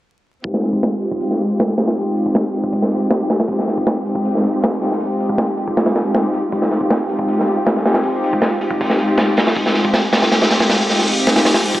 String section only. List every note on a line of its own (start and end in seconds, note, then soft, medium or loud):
0.45 1.00 G#3 medium
0.45 1.00 C4 medium
0.45 1.00 D#4 medium
0.45 1.00 F4 medium
0.45 1.00 G4 medium
1.01 1.75 G#3 medium
1.01 1.75 C4 medium
1.01 1.75 D#4 medium
1.01 1.75 F4 medium
1.01 1.75 G4 loud
1.77 1.83 G#3 medium
1.77 1.83 C4 medium
1.77 1.82 D#4 medium
1.77 1.83 F4 medium
1.77 1.83 G4 loud
1.96 2.51 G#3 medium
1.96 2.51 C4 medium
1.96 2.51 D#4 medium
1.96 2.51 F4 medium
1.96 2.51 G4 medium
2.53 3.46 G#3 medium
2.53 3.46 C4 medium
2.53 3.46 D#4 medium
2.53 3.46 F4 medium
2.53 3.46 G4 loud
3.49 4.04 G#3 medium
3.49 4.04 C4 medium
3.49 4.04 D#4 medium
3.49 4.04 F4 medium
3.49 4.04 G4 medium
4.05 4.79 G#3 medium
4.05 4.79 C4 medium
4.05 4.79 D#4 medium
4.05 4.79 F4 medium
4.05 4.79 G4 loud
4.81 4.86 G#3 medium
4.81 4.86 C4 medium
4.81 4.87 D#4 medium
4.81 4.86 F4 medium
4.81 4.87 G4 loud
5.01 5.55 G#3 medium
5.01 5.55 C4 medium
5.01 5.55 D#4 medium
5.01 5.55 F4 medium
5.01 5.55 G4 loud
5.58 6.03 G#3 medium
5.58 6.03 C4 medium
5.58 6.03 D#4 medium
5.58 6.03 F4 medium
5.58 6.03 G4 medium
6.05 6.50 G#3 medium
6.05 6.50 C4 medium
6.05 6.50 D#4 medium
6.05 6.50 F4 medium
6.05 6.50 G4 loud
6.53 7.07 G#3 medium
6.53 7.07 C4 medium
6.53 7.07 D#4 medium
6.53 7.07 F4 medium
6.53 7.07 G4 medium
7.09 7.83 G#3 medium
7.09 7.83 C4 medium
7.09 7.83 D#4 medium
7.09 7.83 F4 medium
7.09 7.83 G4 loud
7.85 7.90 G#3 medium
7.85 7.90 C4 medium
7.85 7.90 D#4 medium
7.85 7.90 F4 medium
7.85 7.90 G4 loud
8.04 8.59 G#3 medium
8.04 8.59 C4 medium
8.04 8.59 D#4 medium
8.04 8.59 F4 medium
8.04 8.59 G4 loud
8.61 9.54 G#3 medium
8.61 9.54 C4 medium
8.61 9.54 D#4 medium
8.61 9.54 F4 medium
8.61 9.54 G4 loud
9.56 10.11 G#3 medium
9.56 10.11 C4 medium
9.56 10.11 D#4 medium
9.56 10.11 F4 medium
9.56 10.11 G4 medium
10.13 10.87 G#3 medium
10.13 10.87 C4 medium
10.13 10.87 D#4 medium
10.13 10.87 F4 medium
10.13 10.87 G4 loud
10.89 10.94 G#3 medium
10.89 10.94 C4 medium
10.89 10.94 D#4 medium
10.89 10.94 F4 medium
10.89 10.94 G4 loud
11.08 11.63 G#3 medium
11.08 11.63 C4 medium
11.08 11.63 D#4 medium
11.08 11.63 F4 medium
11.08 11.63 G4 loud
11.65 11.80 G#3 medium
11.65 11.80 C4 medium
11.65 11.80 D#4 medium
11.65 11.80 F4 medium
11.65 11.80 G4 medium